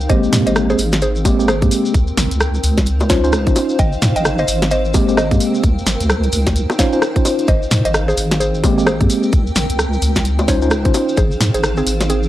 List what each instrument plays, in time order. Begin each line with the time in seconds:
Already playing: ambient pad D#4 C5 F5
0.01 maracas
0.09 wobble bass G#1, tine electric piano G#3 A#3 C4 G4, ambient pad C4, synth pluck C5 D#5, kick, closed hi-hat, maracas
0.23 ambient pad A#4, maracas
0.33 wobble bass G#2, snare, open hi-hat, maracas
0.47 wobble bass G#1, synth pluck C5 D#5, closed hi-hat, maracas
0.55 ambient pad G5, cross-stick, maracas
0.70 synth pluck G#4 C5, maracas
0.79 wobble bass G#1, open hi-hat, maracas
0.92 snare, closed hi-hat, high bongo, maracas
1.02 synth pluck G#4 C5, closed hi-hat, maracas
1.16 maracas
1.25 tine electric piano G#3 A#3 C4 G4, kick, open hi-hat, high bongo, maracas
1.39 tine electric piano G#3 A#3 C4 G4, maracas
1.48 synth pluck G#4 C5, cross-stick, maracas
1.62 wobble bass G#2, tine electric piano G#3 A#3 C4 G4, kick, closed hi-hat, maracas
1.71 open hi-hat, maracas
1.85 maracas
1.94 wobble bass C#2, ambient pad D#4, kick, closed hi-hat, maracas
2.08 maracas
2.17 wobble bass G#1, snare, open hi-hat, maracas
2.30 wobble bass C#2, ambient pad C5, closed hi-hat, maracas
2.40 cross-stick, maracas
2.54 ambient pad F5, maracas
2.64 wobble bass C#2, open hi-hat, maracas
2.78 kick, snare, closed hi-hat, high bongo, maracas
2.86 closed hi-hat, maracas
3.00 high bongo, maracas
3.10 tine electric piano C#4 D#4 F4 C5, synth pluck F4 C#5, kick, snare, open hi-hat, maracas
3.24 tine electric piano C#4 D#4 F4 C5, maracas
3.33 cross-stick, maracas
3.47 wobble bass G#1, tine electric piano C#4 D#4 F4 C5, kick, closed hi-hat, maracas
3.56 open hi-hat, high bongo, maracas
3.69 maracas
3.79 wobble bass G#1, ambient pad C4, synth pluck D#5 G5, kick, closed hi-hat, maracas
3.92 maracas
3.99 wobble bass G#2, ambient pad A#4, snare, open hi-hat, maracas
4.16 wobble bass G#1, synth pluck D#5 G5, closed hi-hat, maracas
4.25 cross-stick, maracas
4.38 synth pluck C5 D#5, maracas
4.48 wobble bass G#1, open hi-hat, maracas
4.62 ambient pad G5, snare, closed hi-hat, high bongo, maracas
4.71 synth pluck C5 D#5, closed hi-hat, maracas
4.85 maracas
4.94 tine electric piano G#3 A#3 C4 G4, kick, open hi-hat, high bongo, maracas
5.08 tine electric piano G#3 A#3 C4 G4, maracas
5.17 synth pluck C5 D#5, cross-stick, maracas
5.31 wobble bass G#2, tine electric piano G#3 A#3 C4 G4, kick, closed hi-hat, maracas
5.40 open hi-hat, maracas
5.55 maracas
5.63 wobble bass C#2, ambient pad D#4, kick, closed hi-hat, maracas
5.77 ambient pad C5, maracas
5.87 wobble bass G#1, snare, open hi-hat, maracas
6.01 wobble bass C#2, closed hi-hat, maracas
6.09 cross-stick, maracas
6.23 closed hi-hat, maracas
6.32 wobble bass C#2, open hi-hat, maracas
6.47 ambient pad F5, kick, snare, closed hi-hat, high bongo, maracas
6.56 wobble bass C#2, closed hi-hat, maracas
6.70 cross-stick, high bongo, maracas
6.79 tine electric piano C#4 D#4 F4 C5, synth pluck C#5 F5, kick, snare, open hi-hat, maracas
6.93 tine electric piano C#4 D#4 F4 C5, maracas
7.02 cross-stick, maracas
7.16 tine electric piano C#4 D#4 F4 C5, kick, closed hi-hat, maracas
7.25 open hi-hat, high bongo, maracas
7.39 closed hi-hat, maracas
7.48 wobble bass G#1, ambient pad C4, synth pluck C5 D#5, kick, closed hi-hat, maracas
7.63 ambient pad G5, maracas
7.71 wobble bass G#2, snare, open hi-hat, maracas
7.85 wobble bass G#1, synth pluck C5 D#5, closed hi-hat, maracas
7.94 ambient pad A#4, cross-stick, maracas
8.08 synth pluck G#4 C5, maracas
8.17 wobble bass G#1, open hi-hat, maracas
8.31 snare, closed hi-hat, high bongo, maracas
8.40 synth pluck G#4 C5, closed hi-hat, maracas
8.54 maracas
8.64 tine electric piano G#3 A#3 C4 G4, kick, open hi-hat, high bongo, maracas
8.78 tine electric piano G#3 A#3 C4 G4, maracas
8.86 synth pluck G#4 C5, cross-stick, maracas
9.01 wobble bass G#2, tine electric piano G#3 A#3 C4 G4, kick, closed hi-hat, maracas
9.10 open hi-hat, maracas
9.23 maracas
9.33 wobble bass C#2, ambient pad D#4, kick, closed hi-hat, maracas
9.47 maracas
9.56 wobble bass G#1, snare, open hi-hat, maracas
9.70 wobble bass C#2, closed hi-hat, maracas
9.79 ambient pad C5, cross-stick, maracas
9.93 maracas
10.02 wobble bass C#2, open hi-hat, maracas
10.15 ambient pad F5, kick, snare, closed hi-hat, high bongo, maracas
10.25 closed hi-hat, maracas
10.39 high bongo, maracas
10.48 tine electric piano C#4 D#4 F4 C5, synth pluck F4 C#5, kick, snare, open hi-hat, maracas
10.62 tine electric piano C#4 D#4 F4 C5, maracas
10.71 cross-stick, maracas
10.85 wobble bass G#1, tine electric piano C#4 D#4 F4 C5, kick, closed hi-hat, maracas
10.94 open hi-hat, high bongo, maracas
11.09 maracas
11.17 wobble bass G#1, ambient pad C4, synth pluck G#4 C5, kick, closed hi-hat, maracas
11.31 maracas
11.37 wobble bass G#2, ambient pad A#4, snare, open hi-hat
11.41 maracas
11.54 wobble bass G#1, synth pluck G#4 C5, closed hi-hat, maracas
11.63 cross-stick, maracas
11.77 synth pluck C4 G#4, maracas
11.87 wobble bass G#1, open hi-hat, maracas
12.01 ambient pad G5, snare, closed hi-hat, high bongo, maracas
12.10 synth pluck C4 G#4, closed hi-hat, maracas
12.23 maracas